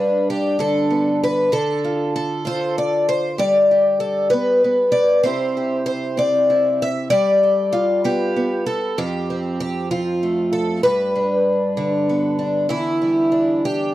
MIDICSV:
0, 0, Header, 1, 2, 480
1, 0, Start_track
1, 0, Tempo, 620476
1, 1182, Time_signature, 6, 3, 24, 8
1, 10787, End_track
2, 0, Start_track
2, 0, Title_t, "Twelve-string acoustic guitar"
2, 0, Program_c, 0, 25
2, 0, Note_on_c, 0, 43, 75
2, 0, Note_on_c, 0, 62, 41
2, 0, Note_on_c, 0, 71, 99
2, 221, Note_off_c, 0, 71, 0
2, 232, Note_on_c, 0, 67, 78
2, 455, Note_on_c, 0, 50, 60
2, 463, Note_off_c, 0, 67, 0
2, 466, Note_on_c, 0, 69, 85
2, 699, Note_on_c, 0, 59, 41
2, 944, Note_off_c, 0, 69, 0
2, 956, Note_on_c, 0, 71, 89
2, 1150, Note_off_c, 0, 43, 0
2, 1152, Note_off_c, 0, 59, 0
2, 1167, Note_off_c, 0, 50, 0
2, 1176, Note_on_c, 0, 50, 74
2, 1180, Note_off_c, 0, 62, 0
2, 1183, Note_on_c, 0, 69, 95
2, 1189, Note_off_c, 0, 71, 0
2, 1427, Note_on_c, 0, 65, 44
2, 1660, Note_off_c, 0, 69, 0
2, 1669, Note_on_c, 0, 69, 81
2, 1886, Note_off_c, 0, 65, 0
2, 1895, Note_on_c, 0, 65, 56
2, 1910, Note_on_c, 0, 72, 93
2, 2146, Note_off_c, 0, 72, 0
2, 2151, Note_on_c, 0, 74, 84
2, 2385, Note_off_c, 0, 74, 0
2, 2386, Note_off_c, 0, 69, 0
2, 2388, Note_on_c, 0, 72, 93
2, 2590, Note_off_c, 0, 65, 0
2, 2616, Note_on_c, 0, 55, 74
2, 2622, Note_off_c, 0, 72, 0
2, 2626, Note_on_c, 0, 74, 103
2, 2871, Note_on_c, 0, 67, 44
2, 3092, Note_off_c, 0, 67, 0
2, 3095, Note_on_c, 0, 69, 83
2, 3323, Note_off_c, 0, 69, 0
2, 3326, Note_on_c, 0, 71, 88
2, 3340, Note_off_c, 0, 50, 0
2, 3350, Note_on_c, 0, 59, 56
2, 3582, Note_off_c, 0, 59, 0
2, 3584, Note_off_c, 0, 74, 0
2, 3591, Note_on_c, 0, 59, 41
2, 3805, Note_on_c, 0, 74, 96
2, 4038, Note_off_c, 0, 59, 0
2, 4047, Note_off_c, 0, 74, 0
2, 4050, Note_on_c, 0, 72, 103
2, 4055, Note_off_c, 0, 71, 0
2, 4059, Note_on_c, 0, 48, 69
2, 4064, Note_on_c, 0, 60, 41
2, 4070, Note_on_c, 0, 64, 48
2, 4077, Note_on_c, 0, 67, 47
2, 4305, Note_off_c, 0, 67, 0
2, 4308, Note_on_c, 0, 67, 42
2, 4524, Note_off_c, 0, 72, 0
2, 4533, Note_on_c, 0, 72, 84
2, 4766, Note_off_c, 0, 60, 0
2, 4775, Note_on_c, 0, 60, 60
2, 4778, Note_off_c, 0, 72, 0
2, 4786, Note_on_c, 0, 74, 101
2, 5017, Note_off_c, 0, 64, 0
2, 5027, Note_on_c, 0, 64, 43
2, 5264, Note_off_c, 0, 74, 0
2, 5277, Note_on_c, 0, 76, 100
2, 5324, Note_off_c, 0, 55, 0
2, 5470, Note_off_c, 0, 60, 0
2, 5472, Note_off_c, 0, 48, 0
2, 5476, Note_off_c, 0, 64, 0
2, 5477, Note_off_c, 0, 67, 0
2, 5490, Note_off_c, 0, 76, 0
2, 5494, Note_on_c, 0, 74, 110
2, 5506, Note_on_c, 0, 55, 74
2, 5749, Note_on_c, 0, 69, 42
2, 5976, Note_on_c, 0, 65, 86
2, 6223, Note_on_c, 0, 59, 59
2, 6225, Note_off_c, 0, 69, 0
2, 6228, Note_on_c, 0, 67, 90
2, 6458, Note_off_c, 0, 74, 0
2, 6461, Note_off_c, 0, 59, 0
2, 6470, Note_on_c, 0, 59, 43
2, 6699, Note_off_c, 0, 65, 0
2, 6700, Note_off_c, 0, 67, 0
2, 6703, Note_on_c, 0, 69, 89
2, 6915, Note_off_c, 0, 55, 0
2, 6918, Note_off_c, 0, 59, 0
2, 6943, Note_off_c, 0, 69, 0
2, 6947, Note_on_c, 0, 41, 76
2, 6948, Note_on_c, 0, 67, 83
2, 7195, Note_on_c, 0, 60, 46
2, 7421, Note_off_c, 0, 67, 0
2, 7430, Note_on_c, 0, 67, 84
2, 7663, Note_off_c, 0, 67, 0
2, 7665, Note_on_c, 0, 53, 62
2, 7666, Note_on_c, 0, 65, 72
2, 7913, Note_on_c, 0, 57, 42
2, 8140, Note_off_c, 0, 65, 0
2, 8143, Note_on_c, 0, 69, 82
2, 8355, Note_off_c, 0, 53, 0
2, 8356, Note_off_c, 0, 41, 0
2, 8358, Note_off_c, 0, 57, 0
2, 8360, Note_off_c, 0, 60, 0
2, 8377, Note_off_c, 0, 69, 0
2, 8380, Note_on_c, 0, 71, 97
2, 8394, Note_on_c, 0, 43, 74
2, 8630, Note_on_c, 0, 62, 44
2, 9105, Note_on_c, 0, 50, 60
2, 9356, Note_on_c, 0, 59, 43
2, 9574, Note_off_c, 0, 62, 0
2, 9583, Note_on_c, 0, 62, 44
2, 9793, Note_off_c, 0, 62, 0
2, 9798, Note_off_c, 0, 43, 0
2, 9800, Note_off_c, 0, 59, 0
2, 9817, Note_on_c, 0, 40, 75
2, 9820, Note_off_c, 0, 71, 0
2, 9827, Note_on_c, 0, 64, 86
2, 10069, Note_on_c, 0, 55, 44
2, 10302, Note_on_c, 0, 62, 44
2, 10544, Note_off_c, 0, 64, 0
2, 10561, Note_on_c, 0, 67, 88
2, 10782, Note_off_c, 0, 62, 0
2, 10787, Note_off_c, 0, 40, 0
2, 10787, Note_off_c, 0, 50, 0
2, 10787, Note_off_c, 0, 55, 0
2, 10787, Note_off_c, 0, 67, 0
2, 10787, End_track
0, 0, End_of_file